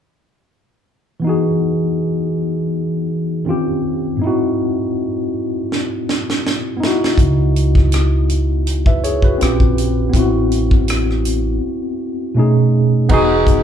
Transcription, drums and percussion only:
5.72 snare
6.09 snare
6.30 snare
6.47 snare
6.83 snare
7.04 snare
7.18 kick, closed hi-hat
7.56 closed hi-hat
7.75 kick, cross-stick
7.92 cross-stick, closed hi-hat
8.29 closed hi-hat
8.67 closed hi-hat
8.86 kick
9.04 closed hi-hat
9.22 kick
9.41 cross-stick, closed hi-hat
9.60 kick
9.78 closed hi-hat
10.13 kick, closed hi-hat
10.52 closed hi-hat
10.71 kick
10.88 cross-stick, closed hi-hat
11.11 cross-stick
11.25 closed hi-hat
13.09 kick, crash
13.47 kick, closed hi-hat

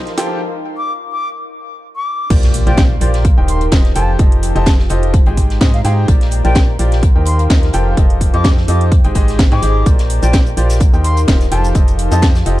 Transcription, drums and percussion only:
0.07 snare, closed hi-hat
0.17 snare, closed hi-hat, open hi-hat
2.30 kick, closed hi-hat, crash
2.43 snare, closed hi-hat
2.54 closed hi-hat, open hi-hat
2.67 closed hi-hat
2.77 kick, snare, closed hi-hat
3.01 closed hi-hat, open hi-hat
3.14 snare, closed hi-hat
3.25 kick, closed hi-hat
3.48 closed hi-hat, open hi-hat
3.61 closed hi-hat
3.72 kick, snare, closed hi-hat
3.85 snare, closed hi-hat
3.95 closed hi-hat, open hi-hat
4.19 kick, closed hi-hat
4.32 closed hi-hat
4.43 closed hi-hat, open hi-hat
4.56 closed hi-hat
4.66 kick, snare, closed hi-hat
4.79 snare
4.90 closed hi-hat, open hi-hat
5.03 closed hi-hat
5.14 kick, closed hi-hat
5.26 closed hi-hat
5.37 kick, closed hi-hat, open hi-hat
5.50 snare, closed hi-hat
5.61 kick, snare, closed hi-hat
5.74 snare, closed hi-hat
5.84 snare, closed hi-hat, open hi-hat
6.08 kick, closed hi-hat
6.21 snare, closed hi-hat
6.31 closed hi-hat, open hi-hat
6.45 closed hi-hat
6.55 kick, snare, closed hi-hat
6.79 closed hi-hat, open hi-hat
6.92 snare, closed hi-hat
7.03 kick, closed hi-hat
7.25 closed hi-hat, open hi-hat
7.39 closed hi-hat
7.50 kick, snare, closed hi-hat
7.63 snare, closed hi-hat
7.73 closed hi-hat, open hi-hat
7.97 kick, closed hi-hat
8.10 closed hi-hat
8.21 kick, closed hi-hat, open hi-hat
8.34 closed hi-hat
8.44 kick, snare, closed hi-hat
8.57 snare
8.68 closed hi-hat, open hi-hat
8.81 closed hi-hat
8.92 kick, closed hi-hat
9.04 closed hi-hat
9.15 kick, closed hi-hat, open hi-hat
9.28 snare, open hi-hat
9.39 kick, snare, closed hi-hat
9.52 snare, closed hi-hat
9.62 snare, closed hi-hat, open hi-hat
9.86 kick, closed hi-hat, cabasa
9.98 snare, closed hi-hat, cabasa
10.10 closed hi-hat, open hi-hat
10.23 closed hi-hat, cabasa
10.33 kick, snare, closed hi-hat, cabasa
10.46 cabasa
10.57 closed hi-hat, open hi-hat
10.70 snare, closed hi-hat, cabasa
10.80 kick, closed hi-hat, cabasa
10.94 cabasa
11.04 closed hi-hat, open hi-hat
11.17 closed hi-hat, cabasa
11.28 kick, snare, closed hi-hat, cabasa
11.41 snare, closed hi-hat, cabasa
11.51 closed hi-hat, open hi-hat
11.64 cabasa
11.75 kick, closed hi-hat, cabasa
11.88 closed hi-hat, cabasa
11.99 closed hi-hat, open hi-hat
12.12 closed hi-hat, cabasa
12.22 kick, snare, closed hi-hat, cabasa
12.35 snare, cabasa
12.46 closed hi-hat, open hi-hat

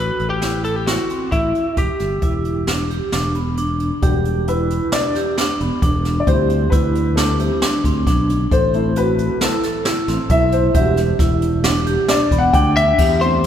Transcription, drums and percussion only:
0.19 closed hi-hat
0.42 snare, closed hi-hat
0.64 closed hi-hat
0.87 snare, closed hi-hat
1.09 closed hi-hat
1.32 kick, closed hi-hat
1.55 closed hi-hat
1.77 kick, closed hi-hat
1.99 snare, closed hi-hat
2.22 kick, closed hi-hat
2.44 closed hi-hat
2.67 snare, closed hi-hat
2.90 closed hi-hat
3.12 snare, closed hi-hat
3.35 closed hi-hat
3.57 closed hi-hat
3.80 closed hi-hat
4.02 kick, closed hi-hat
4.25 closed hi-hat
4.47 closed hi-hat
4.70 closed hi-hat
4.92 snare, closed hi-hat
5.15 snare, closed hi-hat
5.38 snare, closed hi-hat
5.60 closed hi-hat
5.82 kick, closed hi-hat
6.05 snare, closed hi-hat
6.27 kick, closed hi-hat
6.49 closed hi-hat
6.72 kick, closed hi-hat
6.95 closed hi-hat
7.17 snare, closed hi-hat
7.39 closed hi-hat
7.62 snare, closed hi-hat
7.84 kick, closed hi-hat
8.07 kick, snare, closed hi-hat
8.29 closed hi-hat
8.52 kick, closed hi-hat
8.73 closed hi-hat
8.96 closed hi-hat
9.18 closed hi-hat
9.41 snare, closed hi-hat
9.63 snare, closed hi-hat
9.85 snare, closed hi-hat
10.08 snare, closed hi-hat
10.29 kick, closed hi-hat
10.52 closed hi-hat
10.74 kick, closed hi-hat
10.97 snare, closed hi-hat
11.19 kick, snare, closed hi-hat
11.42 closed hi-hat
11.64 snare, closed hi-hat
11.86 closed hi-hat
12.08 snare, closed hi-hat
12.31 kick, closed hi-hat
12.54 kick, closed hi-hat
12.77 closed hi-hat
12.98 kick, crash
13.21 closed hi-hat

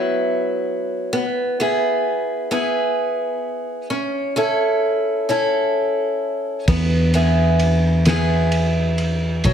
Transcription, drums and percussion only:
6.68 kick, ride
7.14 ride
7.59 ride
8.05 snare, ride
8.52 ride
8.98 ride
9.44 kick, ride

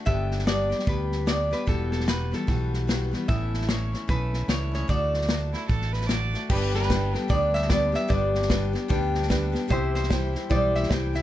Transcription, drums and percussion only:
0.06 kick, snare
0.31 snare
0.39 snare
0.47 snare, hi-hat pedal
0.71 snare
0.79 snare
0.87 kick, snare
1.12 snare
1.27 snare, hi-hat pedal
1.52 snare
1.67 kick, snare
1.92 snare
2.00 snare
2.08 snare, hi-hat pedal
2.33 snare
2.48 kick, snare
2.73 snare
2.89 snare, hi-hat pedal
3.13 snare
3.29 kick, snare
3.54 snare
3.61 snare
3.69 snare, hi-hat pedal
3.94 snare
4.09 kick, snare
4.33 snare
4.49 snare, hi-hat pedal
4.74 snare
4.89 kick, snare
5.14 snare
5.21 snare
5.29 snare, hi-hat pedal
5.53 snare
5.69 kick, snare
5.81 snare
5.93 snare
6.01 snare
6.09 snare, hi-hat pedal
6.34 snare
6.50 kick, snare, crash
6.75 snare
6.82 snare
6.90 kick, snare, hi-hat pedal
7.14 snare
7.30 kick, snare
7.55 snare
7.62 snare
7.70 kick, snare, hi-hat pedal
7.94 snare
8.10 kick, snare
8.35 snare
8.42 snare
8.50 kick, snare, hi-hat pedal
8.74 snare
8.90 kick, snare
9.14 snare
9.22 snare
9.30 kick, snare, hi-hat pedal
9.55 snare
9.70 kick, snare
9.95 snare
10.03 snare
10.10 kick, snare, hi-hat pedal
10.35 snare
10.50 kick, snare
10.75 snare
10.83 snare
10.91 kick, snare, hi-hat pedal
11.15 snare

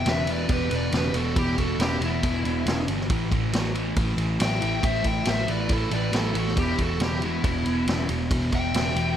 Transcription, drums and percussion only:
0.06 snare, ride
0.27 ride
0.49 kick, ride
0.71 ride
0.92 snare, ride
1.14 ride
1.36 kick, ride
1.58 kick, ride
1.80 snare, ride
2.02 ride
2.23 kick, ride
2.45 ride
2.66 snare, ride
2.88 ride
3.01 snare
3.10 kick, ride
3.32 kick, ride
3.53 snare, ride
3.75 ride
3.96 kick, ride
4.18 ride
4.40 snare, ride
4.62 ride
4.83 kick, ride
5.04 kick, ride
5.25 snare, ride
5.48 ride
5.69 kick, ride
5.91 ride
6.13 snare, ride
6.35 ride
6.48 snare
6.57 kick, ride
6.79 kick, ride
7.00 snare, ride
7.22 ride
7.44 kick, ride
7.66 ride
7.88 snare, ride
8.09 ride
8.31 kick, ride
8.52 kick, ride
8.74 snare, ride
8.96 ride

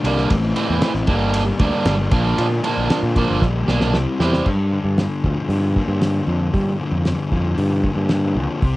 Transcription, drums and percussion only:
0.05 ride
0.18 snare
0.30 kick, ride
0.56 ride
0.82 snare, ride
0.95 snare
1.07 kick, ride
1.34 ride
1.59 kick, ride
1.85 snare, ride
2.11 kick, ride
2.38 ride
2.64 ride
2.90 snare, ride
3.16 kick, ride
3.42 kick, snare
3.68 snare
3.81 snare
3.94 snare
4.20 snare
4.33 snare
4.46 kick, crash
4.98 snare, open hi-hat
5.24 kick
5.50 open hi-hat
5.76 kick
6.02 snare, open hi-hat
6.54 kick, open hi-hat
7.05 snare, open hi-hat
7.32 kick
7.58 open hi-hat
7.84 kick
8.09 snare, open hi-hat
8.62 kick, open hi-hat

